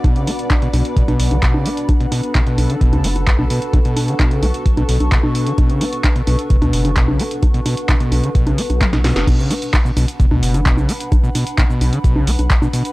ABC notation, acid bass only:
X:1
M:4/4
L:1/16
Q:1/4=130
K:Bm
V:1 name="Acid bass" clef=bass
B,, C, D z2 B,, B,, z B,, B,,2 D, B,, C, D z | z B,, B,, z B,, B,,2 D, B,, C, D z2 B,, B,, z | B,, B,,2 D, B,, C, D z2 B,, B,, z B,, B,,2 D, | B,, C, D z2 B,, B,, z B,, B,,2 D, B,, C, D z |
z B,, B,, z B,, B,,2 D, B,, C, D z2 B,, B,, z | B,, C, D z2 B,, B,, z B,, B,,2 D, B,, C, D z | z B,, B,, z B,, B,,2 D, B,, C, D z2 B,, B,, z |]